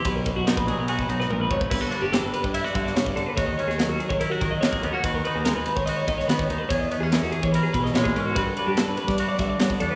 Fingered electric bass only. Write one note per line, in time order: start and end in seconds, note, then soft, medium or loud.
0.05 0.30 B1 loud
0.36 0.53 F#2 medium
0.57 0.74 A#1 medium
0.78 1.08 B1 medium
1.08 1.28 B1 medium
1.30 1.49 A#1 medium
1.51 1.70 G#1 medium
1.71 1.88 G1 medium
2.02 2.19 G1 medium
2.23 2.31 G1 medium
2.44 2.60 G2 medium
2.75 2.92 G2 medium
2.96 3.12 G2 medium
3.16 3.25 G1 medium
3.37 3.54 D#2 medium
3.67 3.85 D#2 medium
3.88 3.97 D#2 medium
4.10 4.27 D#3 medium
4.42 4.58 D#3 medium
4.62 4.79 D#3 medium
4.83 4.92 D#2 medium
5.03 5.20 D#2 loud
5.35 5.52 D#2 medium
5.56 5.64 D#2 medium
5.76 5.93 D#3 medium
6.08 6.24 D#3 medium
6.29 6.45 D#3 medium
6.50 6.58 D#2 medium
6.70 6.87 E2 medium
7.02 7.18 E2 medium
7.22 7.31 E2 medium
7.43 7.59 E3 medium
7.74 7.93 B2 medium
7.94 8.13 A#2 medium
8.16 8.34 G#2 medium
8.36 8.53 G2 loud
8.67 8.84 G2 medium
8.88 8.96 G2 medium
9.08 9.24 G3 medium
9.39 9.56 G3 medium
9.60 9.76 G3 medium
9.81 9.89 E2 medium